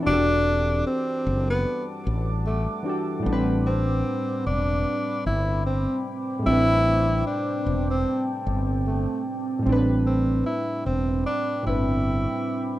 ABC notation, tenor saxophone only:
X:1
M:4/4
L:1/16
Q:"Swing 16ths" 1/4=75
K:Am
V:1 name="Tenor saxophone"
D4 C3 B,2 z3 A,2 z2 | z2 C4 D4 E2 C2 z2 | E4 D3 C2 z3 A,2 z2 | z2 C2 E2 C2 D2 E6 |]